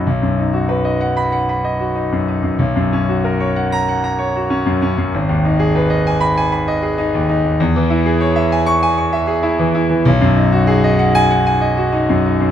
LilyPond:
\new Staff \with { instrumentName = "Grand piano" } { \time 4/4 \key cis \dorian \tempo 4 = 96 << { r4. r16 b''8 r4. r16 | r4. r16 ais''8 r4. r16 | r4. r16 b''8 r4. r16 | r4. r16 cis'''8 r4. r16 |
\key gis \dorian r4. r16 gis''8 r4. r16 | } \\ { b,,16 fis,16 dis'16 fis'16 b'16 dis''16 fis''8 fis''16 b''16 dis''16 fis'16 dis'16 fis,16 dis'16 fis,16 | b,,16 fis,16 cis'16 fis'16 ais'16 cis''16 fis''8 fis''16 ais''16 cis''16 fis'16 cis'16 fis,16 cis'16 fis,16 | gis,,16 dis,16 dis'16 gis'16 b'16 dis''16 gis''8 gis''16 b''16 dis''16 gis'16 dis'16 dis,16 dis'16 dis,16 | e,16 e16 e'16 gis'16 cis''16 e''16 gis''8 gis''16 cis'''16 e''16 gis'16 e'16 e16 e'16 e16 |
b,,16 fis,16 dis'16 fis'16 gis'16 dis''16 fis''8 fis''16 gis''16 dis''16 fis'16 dis'16 fis,16 dis'16 fis,16 | } >> }